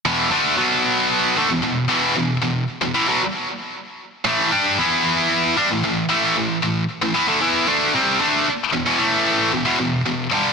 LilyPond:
\new Staff \with { instrumentName = "Distorted electric guitar" } { \clef bass \time 4/4 \key a \major \tempo 4 = 114 <e, b, e>8 <d a d'>8 <b, fis b>4. <d a>16 <e, b,>16 <e, b,>8 <e, b, e>8 | <e, b,>8 <e, b,>8 r16 <e, b,>16 <a, e>16 <b, fis>16 r2 | <a, e a>8 <g d' g'>8 <e b e'>4. <g d'>16 <a, e>16 <a, e>8 <a, e a>8 | <a, e>8 <a, e>8 r16 <a, e>16 <e b>16 <d a>16 <e b e'>8 <d a d'>8 <c g c'>8 <d a d'>8 |
r8 <e, b,>16 <e, b,>16 <a, e a>4 <e, b,>16 <e, b,>16 <e, b,>8 <e, b,>8 <g, d g>8 | }